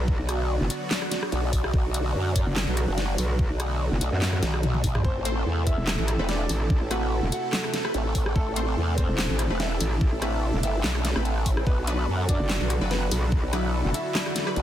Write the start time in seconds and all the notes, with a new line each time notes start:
Already playing: B1 D3 F#3 B3 F#4 D5
0.08 kick
0.19 B1
0.29 cross-stick, closed hi-hat
0.61 F#1
0.70 closed hi-hat
0.91 snare, clap
1.02 cross-stick
1.12 snare, closed hi-hat
1.23 cross-stick
1.32 B1, closed hi-hat
1.53 kick, open hi-hat
1.64 cross-stick
1.74 B1 A3, kick
1.94 closed hi-hat
2.15 F#2
2.36 kick, closed hi-hat
2.47 F#1
2.56 snare, clap
2.68 B1
2.77 cross-stick, closed hi-hat
2.88 F#1
2.98 snare, closed hi-hat
3.18 B1, open hi-hat
3.39 kick
3.50 B1
3.60 cross-stick, closed hi-hat
3.92 F#1
4.01 B1, closed hi-hat
4.12 F#2
4.22 snare, clap
4.33 cross-stick
4.42 B1, snare, closed hi-hat, high tom
4.54 cross-stick
4.63 closed hi-hat, mid tom
4.74 mid tom
4.84 B1, kick, open hi-hat
4.95 cross-stick, mid tom
5.05 A1 C3 C4 E4 A4 C5, kick
5.25 A3 C4 C5, closed hi-hat
5.46 E2
5.67 E4 E5, kick, closed hi-hat
5.78 E1
5.87 snare, clap
5.98 A1
6.08 cross-stick, closed hi-hat
6.19 E1 A3 C4 B4
6.29 D4 D5, snare, closed hi-hat
6.49 A1, open hi-hat
6.70 kick
6.81 A1
6.91 A3 C4 F#4 B4 F#5, cross-stick, closed hi-hat
7.23 E1
7.32 F#4 F#5, closed hi-hat
7.53 snare, clap
7.64 cross-stick
7.74 snare, closed hi-hat
7.85 A3 C4 B4, cross-stick
7.94 A1, closed hi-hat
8.15 kick, open hi-hat
8.26 cross-stick
8.36 A1 A3 D4 A4, kick
8.56 A3 C4 C5, closed hi-hat
8.77 E2
8.98 C4 C5, kick, closed hi-hat
9.09 E1
9.18 snare, clap
9.30 A1
9.39 cross-stick, closed hi-hat
9.50 E1 A3 C4 B4
9.60 E4 E5, snare, closed hi-hat
9.80 A1, open hi-hat
10.01 kick
10.12 A1
10.22 A3 C4 E4 B4 E5, cross-stick, closed hi-hat
10.54 E1
10.63 G1 E4 E5, closed hi-hat
10.84 B1, snare, clap
10.95 cross-stick
11.05 snare, closed hi-hat
11.16 A1 A3 C4 B4, cross-stick
11.25 closed hi-hat
11.46 kick, open hi-hat
11.57 cross-stick
11.67 B1 D3 F#3 B3 F#4 B4, kick
11.87 F#3 D4 B4, closed hi-hat
12.04 F#2 D5
12.29 D4 D5, kick, closed hi-hat
12.40 F#1
12.49 snare, clap
12.60 B1
12.70 cross-stick, closed hi-hat
12.81 F#1 F#3 D4 B4
12.87 B3 B4 B5, snare, closed hi-hat
13.11 B1, open hi-hat
13.32 kick
13.43 B1
13.53 F#3 D4 E4 B4 E5, cross-stick, closed hi-hat
13.85 F#1
13.94 E4 E5, closed hi-hat
14.15 snare, clap
14.26 cross-stick
14.36 snare, closed hi-hat
14.47 F#3 D4 B4, cross-stick
14.56 B1, closed hi-hat